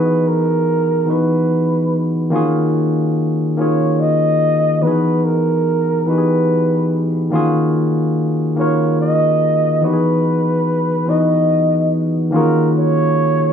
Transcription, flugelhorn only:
0.00 0.29 B4 medium
0.27 1.09 A#4 medium
1.11 1.99 B4 medium
3.60 4.01 C#5 medium
4.00 4.84 D#5 loud
4.82 5.26 B4 medium
5.24 6.09 A#4 medium
6.08 7.01 B4 medium
8.59 8.97 C#5 medium
9.01 9.87 D#5 medium
9.85 11.11 B4 medium
11.10 12.02 D#5 medium
12.35 12.73 A#4 medium
12.78 13.53 C#5 medium

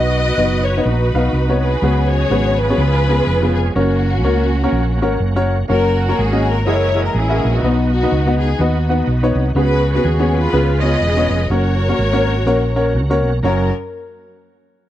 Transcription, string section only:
0.00 0.82 F#4 medium
0.00 0.81 B4 medium
0.00 0.65 D#5 loud
0.63 0.84 C#5 loud
0.82 1.78 D#4 medium
0.82 1.62 F#4 medium
0.82 1.59 B4 loud
1.61 2.10 F#4 medium
1.61 2.10 G#4 medium
1.61 2.07 B4 loud
2.09 2.75 F#4 medium
2.09 2.58 G#4 medium
2.09 2.58 C#5 loud
2.57 3.53 F4 medium
2.57 3.53 G#4 medium
2.57 3.55 B4 loud
3.55 3.75 G#4 medium
3.75 5.18 A#3 medium
3.75 5.17 C#4 medium
3.75 5.17 F#4 loud
5.69 6.63 C#4 medium
5.69 6.63 F#4 medium
5.69 6.06 A#4 loud
6.08 6.17 A#4 loud
6.17 6.47 G#4 loud
6.47 6.66 A#4 loud
6.66 7.14 E4 medium
6.66 7.03 A#4 medium
6.66 7.05 C#5 loud
7.04 7.14 A#4 medium
7.14 7.60 C#4 medium
7.14 7.60 E4 medium
7.14 7.53 G#4 loud
7.52 7.91 B3 medium
7.52 7.91 D#4 medium
7.52 7.89 F#4 medium
7.90 8.59 B3 medium
7.90 8.59 D#4 medium
7.90 8.36 F#4 loud
8.39 8.58 G#4 medium
8.59 9.53 B3 medium
8.59 9.53 D#4 medium
8.59 9.08 F#4 medium
9.56 10.49 F#4 medium
9.56 10.03 G#4 medium
9.56 9.92 B4 loud
9.94 10.04 B4 medium
10.04 10.33 G#4 medium
10.33 11.27 F4 medium
10.33 10.81 G#4 medium
10.33 10.81 B4 loud
10.80 11.46 G#4 medium
10.80 11.46 B4 medium
10.80 11.49 D#5 loud
11.49 12.91 F#4 medium
11.49 12.91 A#4 medium
11.49 12.94 C#5 loud
13.43 13.70 A#4 medium

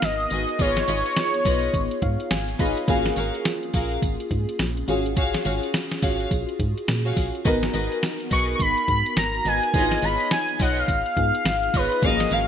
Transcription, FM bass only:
0.03 0.27 G#1 medium
0.31 0.46 G#1 medium
0.59 0.83 G#1 loud
0.88 1.03 G#1 loud
1.45 1.69 B1 loud
1.74 1.89 G#1 loud
2.02 2.17 G#2 loud
2.31 2.55 G#1 loud
2.59 2.74 G#1 medium
2.88 3.12 G#1 loud
3.16 3.31 G#1 loud
3.74 3.98 A#1 medium
4.02 4.17 G#1 loud
4.31 4.46 G#2 loud
4.59 4.84 A#1 loud
4.88 5.36 G#1 loud
5.45 5.60 G#1 loud
6.03 6.27 G#1 medium
6.31 6.46 A#1 loud
6.60 6.74 G#2 loud
6.88 7.12 A#2 loud
7.17 7.32 A#1 loud
7.45 7.69 G#1 loud
7.74 7.89 G#1 loud
8.31 8.55 B1 loud
8.60 8.75 G#1 medium
8.88 9.03 G#2 loud
9.16 9.41 G#1 medium
9.45 9.60 G#1 loud
9.74 9.98 G#1 loud
10.02 10.17 G#1 loud
10.60 10.84 B1 medium
10.88 11.03 G#1 loud
11.17 11.32 G#2 loud
11.45 11.69 G#1 medium
11.74 11.89 G#1 loud
12.03 12.27 G#1 loud
12.31 12.46 G#1 loud

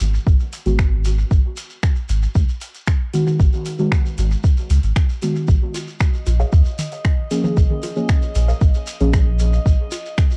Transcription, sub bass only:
0.01 0.18 G#1 medium
0.27 0.35 G#1 loud
0.66 1.24 G#1 loud
1.31 1.40 G#1 loud
2.09 2.27 G#1 medium
2.35 2.44 C#2 medium
3.40 3.48 G#1 loud
4.18 4.36 G#1 medium
4.70 4.79 C#2 loud
4.83 4.92 G#1 medium
5.48 5.57 A#1 loud
6.27 6.44 A#1 medium
6.53 6.61 D#2 medium
7.57 7.66 A#1 loud
8.35 8.53 A#1 medium
8.61 8.70 A#1 loud
9.01 9.59 A#1 medium
9.66 9.75 A#1 medium

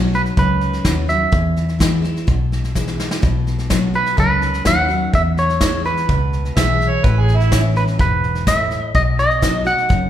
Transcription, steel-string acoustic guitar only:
0.00 0.32 B2 medium
0.00 0.35 F#3 medium
0.00 0.35 B3 medium
0.00 0.35 D#4 medium
0.00 0.36 F#4 medium
0.37 1.28 F#2 medium
0.84 1.08 F#3 medium
0.84 1.08 B3 medium
0.84 1.08 D#4 medium
0.84 1.07 F#4 medium
1.08 1.32 D#4 soft
1.08 1.31 F#4 medium
1.32 2.23 E2 medium
1.79 2.02 E3 medium
1.79 2.03 G#3 medium
1.79 2.03 B3 medium
1.79 2.01 E4 medium
2.02 2.27 B3 soft
2.02 2.26 E4 medium
2.27 3.18 B2 medium
2.75 2.98 E3 medium
2.75 2.98 G#3 medium
2.75 2.99 B3 medium
2.75 2.97 E4 medium
2.98 3.23 B3 soft
2.98 3.21 E4 medium
3.22 4.13 B2 medium
3.70 3.93 F#3 medium
3.70 3.94 B3 medium
3.70 3.94 D#4 medium
3.70 3.92 F#4 medium
3.94 4.17 F#4 medium
4.17 5.08 F#2 medium
4.65 4.88 F#3 medium
4.65 4.89 B3 medium
4.65 4.89 D#4 medium
4.65 4.87 F#4 medium
4.88 5.12 F#4 medium
5.13 6.04 E2 medium
5.60 5.84 E3 medium
5.60 5.84 G#3 medium
5.60 5.84 B3 medium
5.60 5.83 E4 medium
5.85 6.09 B3 soft
5.85 6.08 E4 medium
6.09 6.99 B2 medium
6.56 7.02 E3 medium
6.56 7.02 G#3 medium
6.56 7.03 B3 medium
6.56 7.03 E4 medium
7.04 7.95 A2 medium
7.51 7.97 E3 medium
7.51 7.97 B3 medium
7.51 7.98 C#4 medium
7.51 7.98 E4 medium
7.99 8.45 G#2 medium
8.47 8.92 A2 medium
8.95 9.85 B2 medium
9.41 9.65 F#3 medium
9.41 9.65 B3 medium
9.41 9.66 D#4 medium
9.41 9.64 F#4 medium
9.65 9.90 D#4 soft
9.65 9.88 F#4 medium
9.89 10.10 F#2 medium

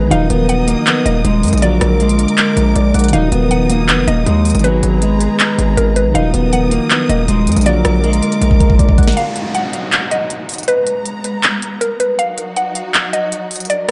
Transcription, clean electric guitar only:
0.11 0.28 D#4 loud
0.30 0.66 B3 medium
0.67 0.84 A#3 medium
0.87 1.04 B3 medium
1.06 1.22 A#3 medium
1.24 1.60 G#3 medium
1.62 1.98 F#3 loud
2.00 3.09 G#3 medium
3.13 3.30 D#4 loud
3.32 3.67 B3 medium
3.70 3.87 A#3 medium
3.88 4.05 B3 medium
4.07 4.24 A#3 medium
4.27 4.62 G#3 medium
4.64 5.00 F#3 loud
5.02 6.11 G#3 medium
6.14 6.31 D#4 loud
6.34 6.69 B3 medium
6.71 6.88 A#3 medium
6.91 7.07 B3 medium
7.09 7.26 A#3 medium
7.28 7.64 G#3 medium
7.66 8.01 F#3 loud
8.04 9.13 G#3 medium

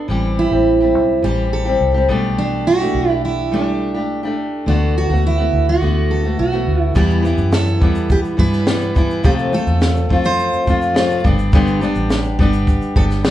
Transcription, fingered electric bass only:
0.09 0.48 A1 medium
0.51 0.95 A1 medium
0.95 1.21 B1 medium
1.24 1.77 A1 medium
1.81 2.07 C2 medium
2.09 2.91 B1 medium
2.95 4.63 B1 medium
4.67 5.06 D2 medium
5.10 5.49 D2 medium
5.53 5.80 D2 medium
5.82 6.35 D2 medium
6.39 6.65 B1 medium
6.67 6.94 D2 medium
6.96 7.35 E2 medium
7.38 7.81 F#2 medium
7.81 8.21 E2 medium
8.39 9.24 G2 medium
9.24 9.64 F2 medium
9.67 10.07 E2 medium
10.10 10.50 F2 medium
10.67 11.26 F2 medium
11.25 11.92 G1 medium
11.96 12.35 A1 medium
12.38 12.78 G1 medium
12.96 13.30 G1 medium

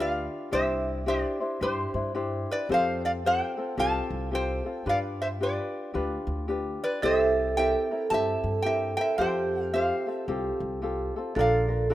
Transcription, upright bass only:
0.00 0.26 D2 medium
0.52 1.23 C2 medium
1.61 1.83 G2 medium
1.94 2.43 G2 medium
2.69 3.40 F2 medium
3.78 3.99 C2 medium
4.10 4.59 C2 medium
4.86 5.57 G2 medium
5.95 6.16 D2 medium
6.27 6.76 D2 medium
7.03 7.74 C2 medium
8.11 8.33 G2 medium
8.44 8.93 G2 medium
9.19 9.89 F2 medium
10.28 10.49 C2 medium
10.60 11.09 C2 medium
11.36 11.94 A#1 loud

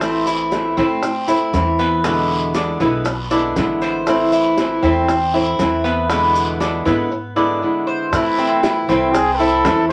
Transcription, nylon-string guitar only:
0.01 0.51 E3 medium
0.01 0.51 A3 medium
0.01 0.52 C4 medium
0.01 0.52 E4 medium
0.52 0.77 E3 soft
0.52 0.77 A3 soft
0.52 0.77 C4 soft
0.52 0.76 E4 soft
0.77 1.02 A3 medium
0.77 1.02 C4 medium
0.77 1.02 E4 medium
1.03 muted nylon-string guitar stroke medium
1.28 1.53 A3 medium
1.28 1.53 C4 medium
1.28 1.52 E4 medium
1.53 2.03 E3 medium
1.53 2.04 A3 soft
1.53 2.04 C4 medium
1.53 2.04 E4 medium
2.04 2.54 B2 medium
2.04 2.54 D3 medium
2.04 2.55 G#3 medium
2.04 2.55 B3 medium
2.04 2.55 E4 medium
2.55 2.79 D3 soft
2.55 2.80 G#3 medium
2.55 2.80 B3 soft
2.55 2.79 E4 soft
2.81 3.05 D3 medium
2.81 3.06 G#3 medium
2.81 3.05 B3 medium
2.81 3.05 E4 medium
3.06 muted nylon-string guitar stroke medium
3.31 3.55 D3 medium
3.31 3.56 G#3 medium
3.31 3.56 B3 medium
3.31 3.55 E4 medium
3.57 4.06 D3 soft
3.57 4.07 G#3 soft
3.57 4.07 B3 medium
3.57 4.07 E4 medium
4.07 4.56 E3 medium
4.07 4.57 A3 medium
4.07 4.58 C4 medium
4.07 4.58 E4 medium
4.57 4.82 E3 soft
4.57 4.83 A3 soft
4.57 4.83 C4 soft
4.57 4.82 E4 medium
4.83 5.08 A3 medium
4.83 5.08 C4 medium
4.83 5.08 E4 medium
5.09 muted nylon-string guitar stroke medium
5.34 5.59 A3 medium
5.34 5.59 C4 medium
5.34 5.58 E4 medium
5.59 6.09 E3 soft
5.59 6.09 A3 medium
5.59 6.10 C4 medium
5.59 6.10 E4 medium
6.10 6.60 B2 medium
6.10 6.59 D3 medium
6.10 6.60 G#3 medium
6.10 6.60 B3 medium
6.10 6.61 E4 medium
6.60 6.85 D3 soft
6.60 6.85 G#3 medium
6.60 6.85 B3 medium
6.60 6.85 E4 medium
6.86 7.10 D3 medium
6.86 7.11 G#3 medium
6.86 7.11 B3 medium
6.86 7.10 E4 medium
7.11 muted nylon-string guitar stroke medium
7.36 7.61 D3 medium
7.36 7.62 G#3 medium
7.36 7.61 B3 medium
7.36 7.61 E4 medium
7.62 8.12 D3 medium
7.62 8.12 G#3 soft
7.62 8.12 B3 medium
7.62 8.13 E4 medium
8.13 9.14 E3 medium
8.13 8.88 A3 medium
8.13 8.89 C4 medium
8.13 8.89 E4 medium
8.89 9.14 A3 medium
8.89 9.14 C4 medium
8.89 9.13 E4 medium
9.15 muted nylon-string guitar stroke medium
9.39 9.64 A3 medium
9.39 9.64 C4 medium
9.39 9.64 E4 medium
9.64 9.93 E3 medium
9.64 9.93 A3 medium
9.64 9.93 C4 medium
9.64 9.93 E4 medium

